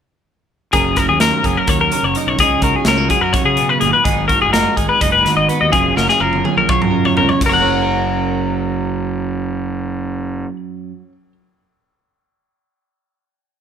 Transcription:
0.73 fingered electric bass F#1, clean electric guitar F#2 G#4 A#4, kick, closed hi-hat
0.96 clean electric guitar G#4 A#4, kick, snare, closed hi-hat
1.09 fingered electric bass D#2, clean electric guitar G#4
1.20 clean electric guitar A#4, snare, closed hi-hat
1.43 fingered electric bass F#1, clean electric guitar F#3 G#4 A#4, kick, closed hi-hat
1.57 clean electric guitar A#4
1.68 fingered electric bass D#2, clean electric guitar A#4 C#5, kick, closed hi-hat
1.81 clean electric guitar A#4
1.92 clean electric guitar C#3 A#4, closed hi-hat
2.03 fingered electric bass F#1, clean electric guitar C#5
2.15 clean electric guitar D#4 A#4, closed hi-hat
2.27 fingered electric bass B1, clean electric guitar C#5
2.38 fingered electric bass C#2, clean electric guitar C#3 D#4 G#4, kick, closed hi-hat
2.62 fingered electric bass C#2, clean electric guitar F#4 A#4, kick, closed hi-hat
2.76 clean electric guitar G#4
2.85 fingered electric bass C#2, clean electric guitar A#4, snare, closed hi-hat
2.89 clean electric guitar C#4
2.98 clean electric guitar D#4
3.09 clean electric guitar F#3 F#4 G#4, kick, closed hi-hat
3.21 fingered electric bass F#2, clean electric guitar A#4
3.33 clean electric guitar C#3 C#5, kick, closed hi-hat
3.44 fingered electric bass C#3, clean electric guitar G#4
3.57 clean electric guitar B2, closed hi-hat
3.69 clean electric guitar B4
3.79 fingered electric bass G#1, clean electric guitar A#2 G#4, closed hi-hat
3.93 clean electric guitar B4
4.04 fingered electric bass G#1, clean electric guitar G#2 D#4 G#4, kick, closed hi-hat
4.28 clean electric guitar F#4 A#4, kick, closed hi-hat
4.42 fingered electric bass F#1, clean electric guitar G#4
4.53 clean electric guitar D#4 A#4, snare, closed hi-hat
4.77 fingered electric bass G#1, clean electric guitar G#3 G#4, kick, closed hi-hat
4.89 clean electric guitar B4
5.01 fingered electric bass F#1, clean electric guitar D#4 D#5, kick, closed hi-hat
5.12 clean electric guitar B4
5.25 clean electric guitar D#3 F#4, snare, closed hi-hat
5.37 fingered electric bass G#1, clean electric guitar D#5
5.49 clean electric guitar B3 B4, closed hi-hat
5.61 fingered electric bass D#2, clean electric guitar D#5
5.70 fingered electric bass F#1, clean electric guitar F#2 F4 G#4, kick, closed hi-hat
5.96 fingered electric bass F#1, clean electric guitar F#4 A#4, snare
6.08 clean electric guitar G#4, snare
6.20 fingered electric bass F#1, clean electric guitar F4 A#4
6.33 high tom
6.45 clean electric guitar F#3 G#4, high tom
6.57 fingered electric bass A#1, clean electric guitar A#4
6.69 clean electric guitar F4 C#5, kick, mid tom
6.82 fingered electric bass F#2, clean electric guitar A#4, mid tom
6.90 clean electric guitar C#3 A#4
7.05 clean electric guitar C#5, floor tom
7.17 fingered electric bass C#2, clean electric guitar C#4 A#4, floor tom
7.29 clean electric guitar C#5, floor tom
7.41 fingered electric bass F#1, clean electric guitar F#2, kick, crash
7.46 clean electric guitar A#4 C#5
7.52 clean electric guitar F#3 F#5
7.62 clean electric guitar C#4
7.82 clean electric guitar A#4

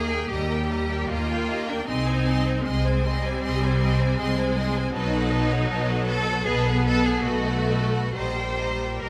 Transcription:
Already playing: double bass section D#2, viola section A#3, cello section G#4, violin section A#5
0.09 violin section A#4 G5
0.29 double bass section D#2, viola section G3, cello section G4, violin section G4 D#5 A#5
0.51 violin section A#4 G5
0.71 violin section G4 D#5 A#5
0.91 violin section A#4 G5
1.09 double bass section D#2, viola section A#3, cello section F4, violin section G4 D#5 A#5
1.29 violin section A#4 G5
1.49 violin section G4 D#5 A#5
1.68 cello section D4, violin section A#4 G5
1.87 double bass section C2, viola section C4, cello section D#4, violin section G#4 D#5 C6
2.09 violin section C5 G#5
2.27 violin section G#4 D#5 C6
2.47 violin section C5 G#5
2.64 double bass section C2, viola section G#3, cello section C4, violin section G#4 D#5 C6
2.86 violin section C5 G#5
3.04 viola section G3, violin section G#4 D#5 C6
3.25 violin section C5 G#5
3.43 double bass section C2, violin section G#4 D#5 C6
3.62 violin section C5 G#5
3.81 violin section G#4 D#5 C6
4.00 violin section C5 G#5
4.18 double bass section C2, viola section G#3, violin section G#4 D#5 C6
4.38 violin section C5 G#5
4.57 violin section G#4 D#5 C6
4.75 violin section C5 G#5
4.93 double bass section B1, viola section F#3, cello section D#4, violin section B4 A5
4.97 violin section D#5
5.12 violin section A4 B4 F#5
5.32 violin section B4 D#5 A5
5.51 violin section A4 B4 F#5
5.70 double bass section B1, violin section B4 D#5 A5
5.88 violin section A4 B4 F#5
6.07 cello section A4, violin section B4 D#5 A5
6.28 violin section A4 B4 F#5
6.46 double bass section B1, viola section B3, cello section G#4, violin section B4 D#5 A5
6.65 violin section A4 B4 F#5
6.86 cello section A4, violin section B4 D#5 A5
7.05 cello section G#4, violin section A4 B4 F#5
7.24 double bass section B1, viola section A3, cello section F#4, violin section B4 D#5 A5
7.47 violin section A4 B4 F#5
7.68 violin section B4 D#5 A5
7.92 violin section A4 B4 F#5
8.15 double bass section A#1, viola section G3, violin section G4 D#5 A#5, cello section C5
8.38 violin section A#4 G5
8.59 violin section G4 D#5 A#5
8.82 violin section A#4 G5
9.02 double bass section A#1, violin section G4 D#5 A#5, cello section A#4

